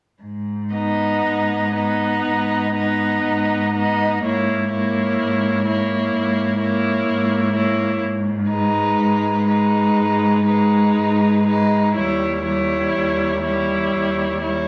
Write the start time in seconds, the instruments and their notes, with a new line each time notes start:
0.22 cello G#2
0.75 viola B3, violin D#4 D#5
1.25 cello G#2
1.76 viola B3, violin D#4 D#5
2.25 cello G#2
2.75 viola B3, violin D#4 D#5
3.24 cello G#2
3.73 viola B3, violin D#4 D#5
4.23 cello G#2, viola A#3, violin E4 C#5
4.72 viola A#3, violin E4 C#5
5.20 cello G#2
5.67 viola A#3, violin E4 C#5
6.14 cello G#2
6.60 viola A#3, violin E4 C#5
7.07 cello G#2
7.53 viola A#3, violin E4 C#5
8.01 cello G#2
8.50 viola G#3, violin D#4 B4
8.99 cello G#2
9.48 viola G#3, violin D#4 B4
9.96 cello G#2
10.46 viola G#3, violin D#4 B4
10.96 cello G#2
11.46 viola G#3, violin D#4 B4
11.95 cello D#2, viola G3, violin E4 C#5
12.45 viola G3, violin E4 C#5
12.95 cello D#2
13.42 viola G3, violin E4 C#5
13.93 cello D#2
14.43 viola G3, violin E4 C#5